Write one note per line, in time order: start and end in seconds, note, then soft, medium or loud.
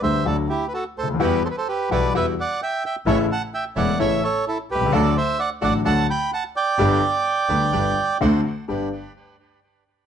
0.02 0.21 D2 medium
0.02 0.22 D2 medium
0.02 0.22 D3 medium
0.02 0.22 G3 soft
0.02 0.22 B3 soft
0.02 0.22 G4 medium
0.02 0.24 C5 medium
0.02 0.27 E5 medium
0.25 0.45 D2 medium
0.25 0.45 D3 medium
0.25 0.45 F#3 soft
0.25 0.45 A3 soft
0.25 0.45 F#4 medium
0.25 0.37 A4 medium
0.25 0.36 D5 medium
0.49 0.66 E4 medium
0.49 0.67 G4 medium
0.68 0.73 B4 medium
0.74 0.84 F#4 medium
0.74 0.84 A4 medium
0.96 1.19 D2 medium
0.96 1.08 A4 medium
0.96 1.08 C5 medium
1.03 1.09 C#2 medium
1.09 1.14 D2 medium
1.14 1.20 D#2 medium
1.19 1.40 E2 medium
1.19 1.40 E3 medium
1.19 1.40 G3 medium
1.19 1.40 B3 medium
1.19 1.39 E4 medium
1.19 1.40 F#4 medium
1.19 1.40 G4 medium
1.19 1.43 G4 medium
1.19 1.43 B4 medium
1.45 1.48 A4 medium
1.45 1.48 C5 medium
1.51 1.56 B4 medium
1.58 1.68 A4 medium
1.58 1.68 C5 medium
1.68 1.90 G4 medium
1.68 1.90 B4 medium
1.90 2.10 B1 medium
1.90 2.11 B1 medium
1.90 2.10 B2 medium
1.90 2.10 E3 soft
1.90 2.11 G3 soft
1.90 2.10 B3 soft
1.90 2.11 E4 medium
1.90 2.11 F#4 soft
1.90 2.11 F#4 medium
1.90 2.11 G4 medium
1.90 2.13 B4 medium
1.90 2.13 D5 medium
2.14 2.34 E2 medium
2.14 2.34 E3 medium
2.14 2.34 G3 soft
2.14 2.34 B3 soft
2.14 2.34 E4 medium
2.14 2.34 F#4 medium
2.14 2.34 G4 medium
2.14 2.26 B4 medium
2.14 2.26 E5 loud
2.41 2.61 D5 medium
2.41 2.61 F#5 medium
2.63 2.83 E5 medium
2.63 2.84 G5 medium
2.86 2.96 E5 medium
2.86 2.96 G5 medium
3.06 3.26 A1 loud
3.06 3.26 A1 medium
3.06 3.26 A2 medium
3.06 3.26 C#3 medium
3.06 3.26 E3 medium
3.06 3.26 A3 medium
3.06 3.26 C#4 medium
3.06 3.26 E4 medium
3.06 3.26 A4 medium
3.06 3.18 C#5 medium
3.06 3.18 E5 loud
3.32 3.42 F#5 medium
3.32 3.42 A5 loud
3.54 3.64 E5 medium
3.54 3.65 G5 medium
3.75 3.96 E1 medium
3.75 3.96 E2 medium
3.75 3.96 C#3 soft
3.75 3.96 E3 soft
3.75 3.96 A3 soft
3.75 3.95 C#4 medium
3.75 3.95 E4 soft
3.75 3.96 E4 medium
3.75 3.96 A4 medium
3.75 3.98 D5 medium
3.75 3.99 F#5 loud
3.99 4.19 A1 medium
3.99 4.19 A2 medium
3.99 4.19 C#3 soft
3.99 4.19 E3 medium
3.99 4.19 A3 soft
3.99 4.19 C#4 medium
3.99 4.19 E4 soft
3.99 4.19 E4 medium
3.99 4.19 A4 medium
3.99 4.21 C#5 medium
3.99 4.24 E5 loud
4.24 4.45 A4 medium
4.24 4.45 C#5 loud
4.48 4.58 E4 medium
4.48 4.58 A4 medium
4.69 4.91 C2 medium
4.69 4.92 G4 medium
4.69 4.92 B4 medium
4.75 4.81 B1 medium
4.80 4.86 C2 medium
4.86 4.92 C#2 medium
4.91 5.11 D2 medium
4.91 5.12 D2 medium
4.91 5.12 D3 medium
4.91 5.12 F#3 medium
4.91 5.12 A3 medium
4.91 5.11 D4 medium
4.91 5.11 F#4 medium
4.91 5.12 F#4 medium
4.91 5.11 A4 loud
4.91 5.15 A4 medium
4.91 5.17 D5 loud
5.17 5.38 C5 medium
5.17 5.40 E5 loud
5.39 5.50 D5 medium
5.39 5.50 F#5 loud
5.61 5.81 A1 medium
5.61 5.81 A2 medium
5.61 5.81 D3 medium
5.61 5.81 F#3 soft
5.61 5.81 A3 soft
5.61 5.81 D4 medium
5.61 5.81 F#4 medium
5.61 5.81 A4 medium
5.61 5.74 D5 medium
5.61 5.74 F#5 loud
5.85 6.04 D2 medium
5.85 6.04 D3 medium
5.85 6.04 F#3 soft
5.85 6.05 A3 soft
5.85 6.04 D4 medium
5.85 6.04 F#4 medium
5.85 6.05 F#4 medium
5.85 6.04 A4 medium
5.85 6.07 F#5 medium
5.85 6.07 A5 loud
6.10 6.31 G5 medium
6.10 6.31 B5 loud
6.33 6.43 F#5 medium
6.33 6.44 A5 medium
6.56 8.17 D5 medium
6.56 8.18 G5 loud
6.78 6.98 G1 medium
6.78 6.99 G2 medium
6.78 6.98 D3 medium
6.78 6.98 G3 medium
6.78 6.98 B3 medium
6.78 6.98 D4 medium
6.78 6.98 G4 medium
6.78 6.99 G4 medium
6.78 6.98 B4 medium
7.49 7.69 D2 medium
7.49 7.69 D3 medium
7.49 7.69 G3 soft
7.49 7.69 B3 soft
7.49 7.69 D4 medium
7.49 7.69 G4 soft
7.49 7.69 G4 medium
7.49 7.69 B4 medium
7.72 7.93 G1 medium
7.72 7.93 G2 medium
7.72 7.93 D3 soft
7.72 7.93 G3 soft
7.72 7.93 B3 soft
7.72 7.92 D4 medium
7.72 7.92 G4 soft
7.72 7.93 G4 medium
7.72 7.93 B4 medium
8.21 8.41 D2 medium
8.21 8.42 D2 loud
8.21 8.41 D3 medium
8.21 8.41 A3 medium
8.21 8.41 C4 medium
8.21 8.41 D4 medium
8.21 8.41 F#4 medium
8.21 8.41 C5 medium
8.68 8.89 G1 medium
8.68 8.88 G2 medium
8.68 8.88 B3 soft
8.68 8.88 D4 soft
8.68 8.88 D4 medium
8.68 8.88 G4 medium
8.68 8.88 G4 soft
8.68 8.89 B4 medium